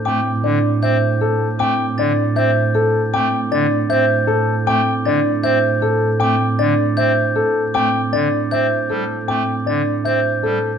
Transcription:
<<
  \new Staff \with { instrumentName = "Glockenspiel" } { \time 4/4 \key a \minor \tempo 4 = 156 d'''8 r4. g'''8 r4. | d'''8 r8 a'''8 r8 g'''8 r4. | d'''8 r8 a'''8 r8 g'''8 r4. | d'''8 r8 a'''8 r8 g'''8 r4. |
d'''8 r8 a'''8 r8 g'''8 r4. | d'''8 r8 a'''8 r8 g'''8 r4. | d'''8 r8 a'''8 r8 g'''8 r4. | }
  \new Staff \with { instrumentName = "Grand piano" } { \time 4/4 \key a \minor g''8 r8 d''8 r8 e''8 r8 a'8 r8 | g''8 r8 d''8 r8 e''8 r8 a'8 r8 | g''8 r8 d''8 r8 e''8 r8 a'8 r8 | g''8 r8 d''8 r8 e''8 r8 a'8 r8 |
g''8 r8 d''8 r8 e''8 r8 a'8 r8 | g''8 r8 d''8 r8 e''8 r8 a'8 r8 | g''8 r8 d''8 r8 e''8 r8 a'8 r8 | }
  \new Staff \with { instrumentName = "Marimba" } { \time 4/4 \key a \minor c'8 r8 d'8 r8 c''8 r8 a'8 r8 | c'8 r8 d'8 r8 c''8 r8 a'8 r8 | c'8 r8 d'8 r8 c''8 r8 a'8 r8 | c'8 r8 d'8 r8 c''8 r8 a'8 r8 |
c'8 r8 d'8 r8 c''8 r8 a'8 r8 | c'8 r8 d'8 r8 c''8 r8 a'8 r8 | c'8 r8 d'8 r8 c''8 r8 a'8 r8 | }
  \new Staff \with { instrumentName = "Pipe organ" } { \time 4/4 \key a \minor a8 r8 d8 r8 c'8 r4. | a8 r8 d8 r8 c'8 r4. | a8 r8 d8 r8 c'8 r4. | a8 r8 d8 r8 c'8 r4. |
a8 r8 d8 r8 c'8 r4. | a8 r8 d8 r8 c'8 r8 g8 r8 | a8 r8 d8 r8 c'8 r8 g8 r8 | }
  \new Staff \with { instrumentName = "Double bass section" } { \clef bass \time 4/4 \key a \minor a,1~ | a,1~ | a,1~ | a,1~ |
a,1~ | a,1~ | a,1 | }
>>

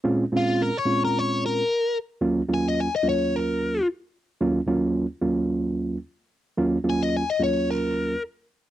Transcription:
<<
  \new Staff \with { instrumentName = "Overdriven electric guitar" } { \time 4/4 \key ees \dorian \tempo 4 = 110 r8 f'8 bes'16 des''8 bes'16 des''8 bes'4 r8 | r8 aes''16 ees''16 aes''16 ees''16 des''8 bes'4 r4 | r1 | r8 aes''16 ees''16 aes''16 ees''16 des''8 bes'4 r4 | }
  \new Staff \with { instrumentName = "Reed electric piano" } { \time 4/4 \key ees \dorian <bes, aes c' des' f'>8 <bes, aes c' des' f'>8 r8 <bes, aes c' des' f'>4. r4 | <ees, ges bes des' f'>8 <ees, ges bes des' f'>8 r8 <ees, ges bes des' f'>4. r4 | <ees, ges bes des' f'>8 <ees, ges bes des' f'>8 r8 <ees, ges bes des' f'>4. r4 | <ees, ges bes des' f'>8 <ees, ges bes des' f'>8 r8 <ees, ges bes des' f'>4. r4 | }
>>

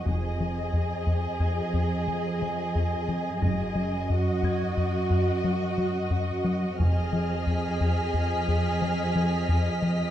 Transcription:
<<
  \new Staff \with { instrumentName = "Harp" } { \time 5/4 \key f \phrygian \tempo 4 = 89 <f'' f'''>2 aes'''2. | bes'''4. aes'''2.~ aes'''8~ | aes'''1~ aes'''4 | }
  \new Staff \with { instrumentName = "Violin section" } { \time 5/4 \key f \phrygian << { r1 r4 | r1 r4 | r4 b'''1 | } \\ { r1 r4 | r1 r4 | f'''1~ f'''4 | } >> }
  \new Staff \with { instrumentName = "Violin section" } { \time 5/4 \key f \phrygian << { ees''1~ ees''4 | ees''1~ ees''4 | ees''1~ ees''4 | } \\ { aes'1~ aes'4~ | aes'4 ges'1 | aes'1~ aes'4 | } >> }
  \new Staff \with { instrumentName = "Analog synth bass" } { \clef bass \time 5/4 \key f \phrygian f,8 f8 f,8 f,8 f,8 f,8 f8 f8 f,8 f8 | ges,8 ges8 ges,8 ges,8 ges,8 ges,8 ges8 ges8 ges,8 ges8 | f,8 f8 f,8 f,8 f,8 f,8 f8 f8 f,8 f8 | }
  \new Staff \with { instrumentName = "Cello section" } { \clef bass \time 5/4 \key f \phrygian f,1~ f,4 | ges,1~ ges,4 | f,1~ f,4 | }
  \new Staff \with { instrumentName = "Double bass section" } { \clef bass \time 5/4 \key f \phrygian f,,4 r1 | ges,,4 r1 | f,,4 r1 | }
>>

